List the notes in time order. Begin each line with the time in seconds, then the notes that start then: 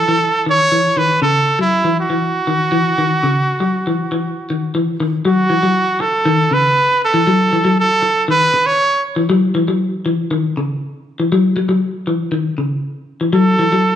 Already playing: A4
0.08 E3
0.46 D#3 C#5
0.72 E3
0.97 D#3 B4
1.22 C#3 A4
1.59 F#3 E4
1.85 E3
2.00 F#4
2.10 E3
2.47 D#3
2.72 E3
2.98 D#3
3.23 C#3
3.60 F#3
3.87 E3
4.12 E3
4.50 D#3
4.75 E3
5.00 D#3
5.25 F#3 F#4
5.50 E3
5.63 F#3
6.00 A4, muted clean electric guitar stroke
6.25 D#3
6.51 C#3 B4
7.04 A4
7.14 E3
7.27 F#3
7.53 E3
7.65 F#3
7.80 A4
8.02 muted clean electric guitar stroke
8.28 D#3 B4
8.54 muted clean electric guitar stroke
8.66 C#5
9.16 E3
9.30 F#3
9.55 E3
9.68 F#3
10.06 E3
10.31 D#3
10.57 C#3
11.20 E3
11.32 F#3
11.56 F#3
11.69 F#3
12.07 E3
12.32 D#3
12.58 C#3
13.21 E3
13.33 F#3 A4
13.59 E3
13.72 F#3